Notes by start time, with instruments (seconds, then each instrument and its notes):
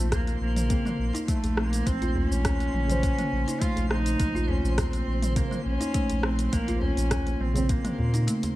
Already playing: sub bass A#1, synth keys C#3 C5, cello A3, synth texture C5
0.12 cello A#3, kick, cross-stick, closed hi-hat, djembe bass, cabasa
0.27 kalimba A#3, closed hi-hat, cabasa
0.41 sub bass A#1, cello A#3
0.56 closed hi-hat, mid tom, cabasa
0.69 synth keys C#3 A#3 C4, kalimba A#3, kick, closed hi-hat, cabasa
0.85 kalimba A#3, mid tom, cabasa
0.99 sub bass A#1
1.13 kalimba D#4, closed hi-hat, djembe slap, cabasa
1.28 kalimba A3, cello A3, kick, closed hi-hat, cabasa
1.44 sub bass A#1, closed hi-hat, djembe tone, cabasa
1.57 cello A#3, kalimba C4, cross-stick
1.73 closed hi-hat, cabasa
1.86 sub bass A#1, kalimba A#3, cello C4, kick, closed hi-hat, cabasa
2.02 kalimba F4, closed hi-hat, djembe tone, cabasa
2.15 kalimba C4, cello C#4, djembe bass
2.31 sub bass A#1, cabasa
2.45 kick, cross-stick, closed hi-hat, djembe bass, cabasa
2.60 kalimba A#3, closed hi-hat, cabasa
2.74 sub bass A#1, mid tom
2.87 synth keys C#3, closed hi-hat, mid tom, djembe tone, cabasa
2.91 synth keys C5
3.03 kalimba A#3, kick, closed hi-hat, cabasa
3.19 kalimba A#3, closed hi-hat, mid tom, cabasa
3.33 sub bass A#1
3.48 kalimba D#4, closed hi-hat, cabasa
3.61 kalimba A3, cello F4, kick, closed hi-hat, cabasa
3.76 sub bass A#1, closed hi-hat, djembe tone, cabasa
3.91 kalimba C4, cello D#4, cross-stick
4.06 closed hi-hat, cabasa
4.20 sub bass A#1, kalimba A#3, kick, closed hi-hat, cabasa
4.35 kalimba F4, djembe tone, cabasa
4.49 kalimba C4, cello C#4, djembe bass
4.64 sub bass A#1, cabasa
4.78 cello C4, kick, cross-stick, closed hi-hat, djembe bass, cabasa
4.93 kalimba A#3, closed hi-hat, cabasa
5.07 sub bass A#1
5.22 closed hi-hat, mid tom, cabasa
5.35 synth keys C#3 A#3 C4, kalimba A#3, cello A#3, kick, closed hi-hat, cabasa
5.51 kalimba A#3, mid tom, cabasa
5.66 sub bass A#1, cello C#4
5.80 kalimba D#4, closed hi-hat, djembe slap, cabasa
5.94 kalimba A3, kick, closed hi-hat, cabasa
6.10 sub bass A#1, closed hi-hat, djembe tone, cabasa
6.23 kalimba C4, cello C4, cross-stick
6.39 closed hi-hat, cabasa
6.52 sub bass A#1, kalimba A#3, cello A#3, kick, closed hi-hat, cabasa
6.68 kalimba F4, closed hi-hat, djembe tone, cabasa
6.81 kalimba C4, cello C#4, djembe bass
6.97 sub bass A#1, closed hi-hat, cabasa
7.11 kick, cross-stick, closed hi-hat, djembe bass, cabasa
7.26 kalimba A#3, closed hi-hat, cabasa
7.40 sub bass A#1, cello C4, mid tom
7.54 synth keys C#3 C4, closed hi-hat, mid tom, djembe slap, djembe tone, cabasa
7.69 kalimba A#3, cello A#3, kick, closed hi-hat, cabasa
7.84 kalimba A#3, closed hi-hat, mid tom, djembe slap, cabasa
7.98 sub bass A#2, djembe bass
8.14 kalimba D#4, closed hi-hat, cabasa
8.27 kalimba A3, closed hi-hat, cabasa
8.43 closed hi-hat, djembe tone, cabasa